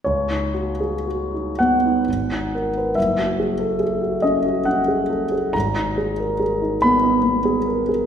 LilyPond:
\new Staff \with { instrumentName = "Grand piano" } { \time 3/4 \key cis \dorian \tempo 4 = 69 << { cis''4. fis''4. | e''4. dis''8 fis''4 | ais''4. b''4. | } \\ { cis,16 dis'16 fis'16 gis'16 fis'16 dis'16 b16 dis'16 gis,,16 dis'16 ais'16 b'16 | fis,,16 fis'16 gis'16 a'16 gis'16 fis'16 cis'16 fis'16 cis'16 gis'16 a'16 gis'16 | gis,,16 dis'16 gis'16 ais'16 gis'16 dis'16 b16 dis'16 b16 gis'16 ais'16 gis'16 | } >> }